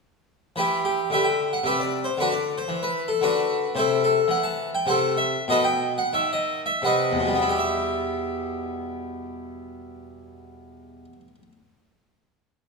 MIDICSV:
0, 0, Header, 1, 2, 480
1, 0, Start_track
1, 0, Key_signature, 1, "minor"
1, 0, Tempo, 549954
1, 484, Time_signature, 3, 2, 24, 8
1, 1438, Tempo, 524017
1, 2878, Tempo, 544959
1, 3838, Tempo, 583658
1, 4798, Tempo, 636943
1, 5278, Tempo, 688073
1, 5758, Tempo, 765306
1, 7678, Tempo, 740741
1, 9506, End_track
2, 0, Start_track
2, 0, Title_t, "Harpsichord"
2, 0, Program_c, 0, 6
2, 488, Note_on_c, 0, 52, 55
2, 498, Note_on_c, 0, 71, 72
2, 513, Note_on_c, 0, 67, 60
2, 518, Note_on_c, 0, 64, 58
2, 698, Note_off_c, 0, 71, 0
2, 725, Note_off_c, 0, 67, 0
2, 728, Note_off_c, 0, 64, 0
2, 741, Note_on_c, 0, 67, 77
2, 873, Note_off_c, 0, 52, 0
2, 939, Note_off_c, 0, 67, 0
2, 961, Note_on_c, 0, 50, 58
2, 980, Note_on_c, 0, 76, 82
2, 987, Note_on_c, 0, 71, 62
2, 993, Note_on_c, 0, 67, 63
2, 1086, Note_on_c, 0, 79, 83
2, 1088, Note_off_c, 0, 71, 0
2, 1091, Note_off_c, 0, 67, 0
2, 1092, Note_off_c, 0, 76, 0
2, 1321, Note_off_c, 0, 79, 0
2, 1336, Note_on_c, 0, 78, 80
2, 1340, Note_off_c, 0, 50, 0
2, 1426, Note_on_c, 0, 48, 55
2, 1446, Note_off_c, 0, 78, 0
2, 1447, Note_on_c, 0, 76, 81
2, 1457, Note_on_c, 0, 71, 65
2, 1462, Note_on_c, 0, 67, 62
2, 1562, Note_off_c, 0, 71, 0
2, 1564, Note_off_c, 0, 67, 0
2, 1565, Note_off_c, 0, 76, 0
2, 1577, Note_on_c, 0, 74, 72
2, 1801, Note_on_c, 0, 72, 76
2, 1811, Note_off_c, 0, 74, 0
2, 1818, Note_off_c, 0, 48, 0
2, 1921, Note_on_c, 0, 50, 56
2, 1922, Note_off_c, 0, 72, 0
2, 1946, Note_on_c, 0, 71, 83
2, 1951, Note_on_c, 0, 62, 64
2, 1956, Note_on_c, 0, 66, 66
2, 2049, Note_off_c, 0, 62, 0
2, 2052, Note_off_c, 0, 66, 0
2, 2052, Note_on_c, 0, 74, 78
2, 2054, Note_off_c, 0, 71, 0
2, 2250, Note_off_c, 0, 74, 0
2, 2288, Note_on_c, 0, 72, 75
2, 2303, Note_off_c, 0, 50, 0
2, 2387, Note_on_c, 0, 52, 57
2, 2519, Note_on_c, 0, 71, 73
2, 2521, Note_off_c, 0, 72, 0
2, 2751, Note_on_c, 0, 69, 80
2, 2757, Note_off_c, 0, 71, 0
2, 2775, Note_off_c, 0, 52, 0
2, 2872, Note_on_c, 0, 50, 61
2, 2876, Note_off_c, 0, 69, 0
2, 2886, Note_on_c, 0, 71, 85
2, 2890, Note_on_c, 0, 66, 62
2, 2892, Note_on_c, 0, 62, 62
2, 3257, Note_off_c, 0, 50, 0
2, 3329, Note_off_c, 0, 66, 0
2, 3330, Note_off_c, 0, 62, 0
2, 3343, Note_on_c, 0, 48, 69
2, 3357, Note_on_c, 0, 72, 94
2, 3361, Note_off_c, 0, 71, 0
2, 3374, Note_on_c, 0, 64, 69
2, 3375, Note_on_c, 0, 69, 69
2, 3561, Note_off_c, 0, 72, 0
2, 3589, Note_off_c, 0, 64, 0
2, 3589, Note_off_c, 0, 69, 0
2, 3602, Note_on_c, 0, 69, 89
2, 3734, Note_off_c, 0, 48, 0
2, 3805, Note_off_c, 0, 69, 0
2, 3811, Note_on_c, 0, 52, 70
2, 3836, Note_on_c, 0, 78, 104
2, 3941, Note_on_c, 0, 81, 101
2, 3953, Note_off_c, 0, 78, 0
2, 4147, Note_off_c, 0, 81, 0
2, 4197, Note_on_c, 0, 79, 101
2, 4200, Note_off_c, 0, 52, 0
2, 4290, Note_on_c, 0, 48, 75
2, 4304, Note_on_c, 0, 78, 113
2, 4313, Note_off_c, 0, 79, 0
2, 4316, Note_on_c, 0, 72, 77
2, 4322, Note_on_c, 0, 69, 74
2, 4512, Note_off_c, 0, 78, 0
2, 4538, Note_off_c, 0, 72, 0
2, 4541, Note_off_c, 0, 69, 0
2, 4550, Note_on_c, 0, 76, 100
2, 4689, Note_off_c, 0, 48, 0
2, 4760, Note_off_c, 0, 76, 0
2, 4801, Note_on_c, 0, 47, 80
2, 4814, Note_on_c, 0, 75, 120
2, 4823, Note_on_c, 0, 69, 88
2, 4823, Note_on_c, 0, 71, 90
2, 4919, Note_off_c, 0, 69, 0
2, 4920, Note_off_c, 0, 71, 0
2, 4922, Note_off_c, 0, 75, 0
2, 4924, Note_on_c, 0, 79, 110
2, 5124, Note_off_c, 0, 79, 0
2, 5177, Note_on_c, 0, 78, 90
2, 5184, Note_off_c, 0, 47, 0
2, 5289, Note_off_c, 0, 78, 0
2, 5289, Note_on_c, 0, 51, 80
2, 5298, Note_on_c, 0, 76, 111
2, 5404, Note_off_c, 0, 76, 0
2, 5427, Note_on_c, 0, 75, 103
2, 5616, Note_off_c, 0, 75, 0
2, 5658, Note_on_c, 0, 76, 98
2, 5668, Note_off_c, 0, 51, 0
2, 5769, Note_off_c, 0, 76, 0
2, 5770, Note_on_c, 0, 48, 69
2, 5785, Note_on_c, 0, 78, 96
2, 5789, Note_on_c, 0, 71, 70
2, 5795, Note_on_c, 0, 75, 72
2, 5955, Note_on_c, 0, 40, 66
2, 6004, Note_on_c, 0, 47, 55
2, 6052, Note_on_c, 0, 55, 54
2, 6097, Note_on_c, 0, 59, 49
2, 6144, Note_on_c, 0, 64, 55
2, 6151, Note_off_c, 0, 48, 0
2, 6184, Note_off_c, 0, 78, 0
2, 6191, Note_on_c, 0, 67, 53
2, 6231, Note_off_c, 0, 71, 0
2, 6234, Note_off_c, 0, 75, 0
2, 6251, Note_on_c, 0, 76, 66
2, 8446, Note_off_c, 0, 40, 0
2, 8497, Note_off_c, 0, 47, 0
2, 8547, Note_off_c, 0, 55, 0
2, 8593, Note_off_c, 0, 59, 0
2, 8642, Note_off_c, 0, 64, 0
2, 8690, Note_off_c, 0, 67, 0
2, 8752, Note_off_c, 0, 76, 0
2, 9506, End_track
0, 0, End_of_file